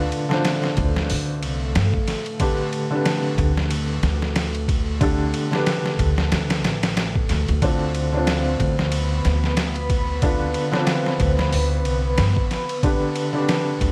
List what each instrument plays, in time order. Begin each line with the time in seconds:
Already playing: felt piano D3 D4 F4 B4, ambient pad A3 A4
0.12 ride
0.29 felt piano D3 D4 F4, snare
0.33 felt piano C5
0.45 snare, ride
0.64 snare
0.77 upright bass D2, kick, ride
0.96 snare
1.10 upright bass D2, open hi-hat
1.42 upright bass C2, ride
1.75 upright bass G2, snare, ride
1.94 kick
2.08 snare, ride
2.26 ride
2.40 felt piano D3 D4 G4 B4, kick, ride
2.73 ride
2.91 felt piano D3 D4 G4
2.95 felt piano B4
3.05 snare, ride
3.38 upright bass D2, kick, ride
3.57 snare
3.71 ride
4.03 upright bass D2, snare, ride
4.22 snare
4.36 snare, ride
4.55 ride
4.68 kick, ride
5.00 felt piano D3 D4 G4 A4, kick, ride
5.34 ride
5.51 felt piano D3 D4 G4, snare
5.55 felt piano B4
5.66 snare, ride
5.86 snare
5.99 upright bass D2, kick, ride
6.18 snare
6.32 upright bass D2, snare, ride
6.50 snare, ride
6.64 upright bass A1, snare, ride
6.83 snare, ride
6.97 snare, ride
7.15 kick
7.29 upright bass D2, snare, ride
7.48 upright bass D2, ride
7.62 felt piano D3 C4 D4 F4, synth drone B3, ambient pad B4 B5, kick, ride
7.95 ride
8.12 felt piano D3 D4 F4
8.17 felt piano C4
8.27 snare, ride
8.60 upright bass D2, kick, ride
8.79 snare
8.92 ride
9.25 upright bass D2, snare, ride
9.44 snare
9.57 snare, ride
9.76 ride
9.90 kick, ride
10.22 felt piano D3 D4 F4 B4, kick, ride
10.54 ride
10.72 felt piano D3 D4 F4, snare
10.76 felt piano C4
10.87 snare, ride
11.06 snare
11.20 upright bass D2, kick, ride
11.39 snare
11.53 upright bass D2, open hi-hat
11.85 upright bass C2, ride
12.18 upright bass G2, snare, ride
12.37 kick
12.51 snare, ride
12.69 ride
12.83 felt piano D3 D4 G4 B4, kick, ride
13.16 ride
13.33 felt piano D3 D4 G4
13.38 felt piano B4
13.49 snare, ride
13.81 upright bass D2, kick, ride